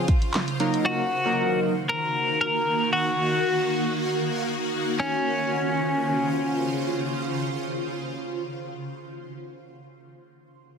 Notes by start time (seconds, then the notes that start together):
Already playing: C#3 F4 C5
0.08 kick, closed hi-hat
0.22 closed hi-hat
0.34 snare, clap, closed hi-hat
0.48 closed hi-hat
0.60 D#3 F#3 A#3 D#4 F#4 A#4, closed hi-hat
0.74 closed hi-hat
0.86 F#4
1.11 D#4 A#4
1.25 F#3 A#3 D#4 A#4
1.89 A#4
2.41 A#4
2.93 F#4
5.00 C#3 C#4 F4 C5